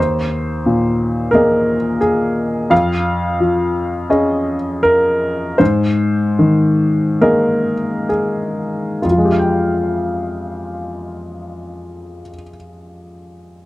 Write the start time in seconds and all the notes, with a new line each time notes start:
Already playing: D#2 C5
0.66 A#2
1.31 A#3 G#4 A#4 D#5
2.01 G#4
2.70 F2 F5
3.40 F3
4.10 C#4 G#4 D#5
4.83 A#4
5.58 G#2 C5
6.39 D#3
7.21 A#3 G#4 A#4 D#5
8.09 G#4
9.02 F2 F4
9.11 F3
9.18 G#3
9.25 G4
9.32 F5
9.39 G5